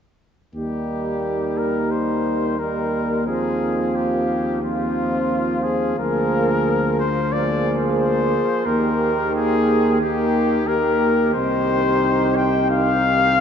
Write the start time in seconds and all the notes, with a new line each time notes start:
0.54 D#2 G3 A#3 D#4 G4
1.57 A#4
1.91 C5
2.59 G3 A#3 D#4 A#4
3.27 F3 C4 F4 G#4
3.95 G4
4.61 F3 C4 F4
5.63 G#4
5.98 D2 F3 A#3 G#4 A#4
6.99 C5
7.32 F3 A#3 G#4 D5
8.00 C5
8.66 D#2 D#3 A#3 G4 A#4
9.35 G#4
10.00 D#3 A#3 G4
10.67 D#3 A#3 G4 A#4
11.34 C2 D#3 D#4 G4 C5
12.36 G5
12.70 F5